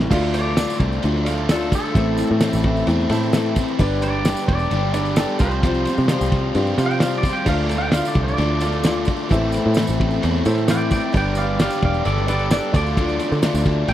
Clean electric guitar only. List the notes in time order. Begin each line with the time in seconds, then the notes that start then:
0.34 D5
0.81 C5
1.51 A4
1.75 A4
4.03 D5
4.48 D5
5.18 A4
5.41 C5
6.86 G5
7.01 F5
7.18 D5
7.33 G5
7.49 F5
7.63 D5
7.78 G5
7.93 F5
8.08 D5
8.24 D5
10.70 D5 G5
10.91 D5 G5
11.17 D5 G5
11.37 D5 F5
11.62 D5 F5
11.85 D5 F5
12.05 A4 D5
12.29 A4 D5
12.51 A4 D5
12.76 D5
13.89 G5